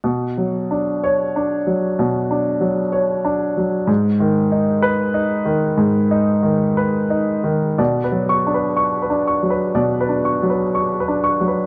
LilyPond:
<<
  \new Staff \with { instrumentName = "Grand piano" } { \time 4/4 \key b \dorian \tempo 4 = 62 << { r4 cis''8 r2 r8 | r4 b'8 r2 r8 | r8 cis'''8 r2. | } \\ { r1 | r1 | d''16 b'8 b'16 cis'''16 b'16 cis'''16 b'16 d''16 b'16 cis'''16 b'16 cis'''16 b'16 cis'''16 b'16 | } >> }
  \new Staff \with { instrumentName = "Grand piano" } { \clef bass \time 4/4 \key b \dorian \tuplet 3/2 { b,8 fis8 d'8~ d'8 d'8 fis8 b,8 d'8 fis8 cis''8 d'8 fis8 } | \tuplet 3/2 { gis,8 dis8 dis'8~ dis'8 dis'8 dis8 gis,8 dis'8 dis8 b'8 dis'8 dis8 } | \tuplet 3/2 { b,8 fis8 d'8~ d'8 d'8 fis8 b,8 d'8 fis8~ fis8 d'8 fis8 } | }
>>